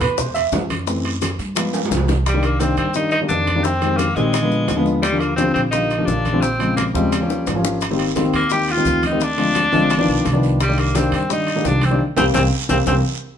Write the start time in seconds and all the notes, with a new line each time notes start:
0.00 E2 B4, high bongo, high conga, low conga, high timbale, short guiro, maracas
0.18 C5, high bongo, high conga, low conga, long guiro, maracas
0.34 E5, high bongo, high conga, high timbale, maracas
0.52 F#2, high bongo, low bongo, high conga, low timbale, short guiro, maracas
0.70 high conga, high timbale, short guiro, maracas
0.86 E3 A3 C4, high bongo, high conga, long guiro, maracas
1.04 high bongo, high conga, high timbale
1.21 high bongo, high conga, high timbale, low timbale, short guiro, maracas
1.39 G2, high bongo, short guiro, maracas
1.55 F3 G#3 B3, high bongo, high conga, high timbale, long guiro, maracas
1.74 high conga, high timbale, maracas
1.85 low timbale
1.90 C2, low bongo, high conga, short guiro, maracas
1.97 low timbale
2.08 low bongo, high conga, low timbale, short guiro, maracas
2.26 G3, high bongo, high conga, high timbale, maracas
2.34 D#3 G3 A#3 D4
2.43 A#3, high conga, high timbale, maracas
2.59 D#3 G3 A#3 C4 D4, high bongo, high conga, high timbale, maracas
2.77 G2 C4, high bongo, high timbale, maracas
2.94 D#3 G3 A#3 D4 D#4, high bongo, high conga, maracas
3.11 D#4, high bongo, high conga, high timbale, maracas
3.21 D#3 G3 A#3 D4
3.29 F2 D4, high bongo, low bongo, high conga, maracas
3.47 high bongo, high conga, high timbale, maracas
3.55 D#3 G3 A#3 D4
3.64 C4, high bongo, high conga, maracas
3.81 D#3 G3 G#3 C4, high conga, high timbale, maracas
3.97 A#3, high bongo, high conga, high timbale, maracas
4.16 A#1 D#3 G3 G#3 C4, high bongo, high conga, maracas
4.34 high bongo, high conga, high timbale, maracas
4.42 D3 F3 G#3 B3
4.51 high bongo, high conga, maracas
4.68 D#2, high bongo, low bongo, high conga, high timbale, low timbale, maracas
4.76 D3 F3 G#3 B3
4.86 high bongo, high conga, maracas
5.02 G3, high bongo, high conga, high timbale, maracas
5.12 D3 F3 G3 A#3
5.20 A#3, high conga, high timbale, maracas
5.36 D3 F3 G3 C4, high bongo, high conga, high timbale, maracas
5.54 A#1 C4, high bongo, high conga, high timbale, maracas
5.71 D3 F3 G3 A#3 D#4, high bongo, high conga, maracas
5.90 high bongo, high conga, high timbale, maracas
5.98 D3 F3 G3 A#3
6.06 A#1 D4, high bongo, low bongo, high conga, maracas
6.25 high bongo, high conga, high timbale, maracas
6.33 D3 F3 G3 C4
6.41 C4, high bongo, maracas
6.59 C#3 F3 G#3 C4, high conga, high timbale, maracas
6.77 A#3, high bongo, high conga, high timbale, maracas
6.94 D#2 C#3 F3 G3 G#3 C4, high bongo, high conga, maracas
7.12 high bongo, high timbale, maracas
7.20 F3 G3 A#3 C#4
7.30 low bongo, maracas
7.46 G#1, low bongo, high conga, high timbale, low timbale, maracas
7.55 F3 G3 A#3 C#4
7.64 low bongo, maracas
7.81 high bongo, high conga, high timbale, long guiro, maracas
7.90 D#3 G3 A#3 C4
7.99 high conga, high timbale, maracas
8.15 D#3 G3 A#3 C4, high bongo, high conga, high timbale, short guiro, maracas
8.33 D#2 A#3, high bongo, high timbale, short guiro, maracas
8.50 D#3 G3 A#3 C4 G4, high bongo, high conga, long guiro, maracas
8.68 F4, high bongo, high conga, high timbale, maracas
8.77 D#3 G3 A#3 C4
8.85 D2, high bongo, low bongo, high conga, short guiro, maracas
9.03 D#4, high bongo, high conga, high timbale, short guiro, maracas
9.11 D#3 G3 A#3 C4
9.20 D4, high bongo, high conga, long guiro, maracas
9.37 D3 F3 G#3 C4, high conga, high timbale, maracas
9.55 high bongo, high conga, high timbale, short guiro, maracas
9.72 G1 D3 F3 G#3 C4, high bongo, high conga, short guiro, maracas
9.90 high bongo, high conga, high timbale, long guiro, maracas
9.98 D#3 F3 B3 D4
10.08 B1, high bongo, maracas
10.25 C2, high bongo, low bongo, high conga, high timbale, short guiro, maracas
10.32 D#3 F3 B3 D4
10.43 high bongo, short guiro, maracas
10.60 G3, high bongo, high conga, high timbale, long guiro, maracas
10.68 D#3 G3 A#3 D4
10.78 A#3, high conga, high timbale, maracas
10.94 D#3 G3 A#3 C4 D4, high bongo, high conga, high timbale, short guiro, maracas
11.12 G2 C4, high bongo, high conga, high timbale, short guiro, maracas
11.30 D#3 G3 A#3 D4 D#4, high bongo, high conga, long guiro, maracas
11.47 high bongo, high conga, high timbale, maracas
11.55 D#3 G3 A#3 D4
11.64 C2 D4, high bongo, low bongo, high conga, low timbale, short guiro, maracas
11.81 C4, high bongo, high conga, high timbale, short guiro, maracas
11.90 D#3 G3 A#3 D4
12.17 C2 G3 A#3 C4, low bongo, high conga, high timbale, long guiro, maracas
12.34 C2 G3 A#3 C4, low bongo, high conga, high timbale, long guiro, maracas
12.69 C2 G3 A#3 C4, low bongo, high conga, high timbale, maracas
12.86 C2 G3 A#3 C4, low bongo, high conga, high timbale, long guiro, maracas